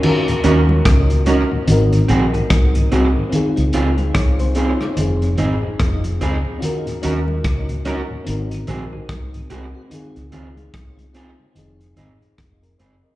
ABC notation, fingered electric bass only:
X:1
M:4/4
L:1/16
Q:"Swing 16ths" 1/4=73
K:Ebdor
V:1 name="Fingered electric bass" clef=bass
z2 E,,2 D,,3 z A,,,2 B,,, z C,,2 C,, z | z D,, D,,2 C,,3 z F,,,2 A,,, z F,,,2 D,, z | z2 E,,2 D,,3 z A,,,2 B,,, z C,,2 C,, z | z D,, D,,2 C,,3 z F,,,2 A,,, z F,,,2 G,,, z |]